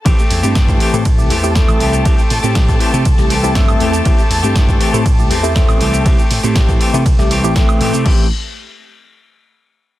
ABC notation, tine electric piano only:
X:1
M:4/4
L:1/16
Q:1/4=120
K:Am
V:1 name="Tine electric piano"
[A,CEG] z2 [A,CEG]4 [A,CEG] z [A,CEG] z [A,CEG] [A,CEA]4 | [A,CEG] z2 [A,CEG]4 [A,CEG] z [A,CEG] z [A,CEG] [A,CEA]4 | [A,CEG] z2 [A,CEG]4 [A,CEG] z [A,CEG] z [A,CEG] z4 | [A,CEG] z2 [A,CEG]4 [A,CEG] z [A,CEG] z [A,CEG] [A,C]4 |
[A,CEG]2 z12 z2 |]